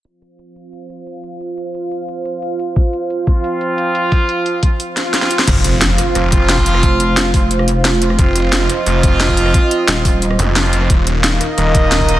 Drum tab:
CC |----------------|----------------|----------------|----------------|
HH |x-x-x-x-x-x-x-x-|x-x-x-x-x-x-x-x-|x-x-x-x-x-x-x-x-|x-x-x-x-x-x-x-x-|
SD |----------------|----------------|----------------|----------o-oo-o|
BD |----------------|----------------|o-----o---------|o-----o---------|

CC |x---------------|----------------|----------------|----------------|
HH |x-x-x-x-x-x-x-x-|x-x-x-o-x-x-x-x-|x-x-x-x-x-x-x-x-|x-x-x-o-x-x-x-x-|
SD |----o-r-r---o--r|----o----r--o--r|----o-r-r---o--r|----o----r--o--r|
BD |o---------o--o--|o-----o---------|o---------o--o--|o-----o---------|

CC |----------------|
HH |x-x-x-x-x-x-x-x-|
SD |----o-r-r---o---|
BD |o---------o--o--|